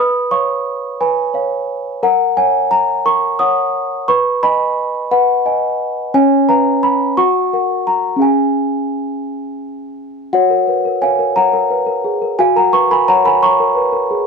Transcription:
Already playing: B4 B5 D#6
0.31 C#5 F5 C#6
1.01 B4 G#5 B5
1.34 C#5 F5
2.03 A#4 F#5 A#5
2.37 C#5 F#5 G#5
2.71 A#5
3.05 A#4 A#5 C#6
3.39 C#5 F#5 D#6
4.08 B4 B5 C#6
4.43 D#5 G#5 B5
5.11 B4 F#5 B5
5.46 D#5 G#5
6.14 C#4 C#5 G#5
6.49 B4 F5 A#5
6.83 B5
7.17 F#4 F#5 C#6
7.53 A#4 F#5
7.87 A#5
8.16 C#4 G#4 F5
8.22 G#5
10.33 F#4 C#5 F#5
10.50 A#4
10.68 B4
10.85 A#4
11.01 C#5 F5 G#5
11.19 A#4
11.36 C#5 F#5 A#5
11.53 A#4
11.70 B4
11.86 A#4
12.04 G#4
12.22 A#4
12.39 F#4 F5 G#5
12.56 A#4 F#5 A#5
12.73 B4 A#5 C#6
12.90 A#4 G#5 B5
13.08 C#5 F#5 A#5
13.25 A#4 G#5 B5
13.43 C#5 A#5 C#6
13.60 A#4
13.75 B4
13.93 A#4
14.11 G#4

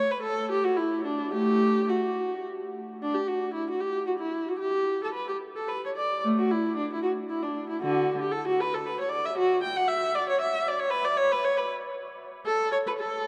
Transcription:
Already playing: C#5
0.11 B4
0.22 A4
0.51 G4
0.64 F#4
0.77 E4
1.05 D4
1.33 A3 G4
1.89 F#4
3.02 D4
3.15 G4
3.27 F#4
3.54 E4
3.70 F#4
3.80 G4
4.07 F#4
4.19 E4
4.49 F#4
4.59 G4
5.04 A4
5.14 B4
5.29 G4
5.56 A4
5.69 B4
5.86 C#5
5.96 D5
6.25 A3
6.38 F#4
6.51 E4
6.76 D4
6.94 E4
7.03 F#4
7.30 E4
7.43 D4
7.69 E4
7.82 D3 F#4
8.21 G4
8.32 A4
8.47 F#4
8.61 B4
8.74 A4
8.86 B4
9.00 C#5
9.10 D5
9.26 E5
9.38 F#4
9.63 G5
9.76 F#5
9.88 E5
10.15 D5
10.29 C#5
10.41 E5
10.68 D5
10.79 C#5
10.90 B4
11.05 D5
11.17 C#5
11.32 B4
11.45 C#5
11.57 B4
12.46 A4
12.72 C#5
12.87 B4
12.99 A4

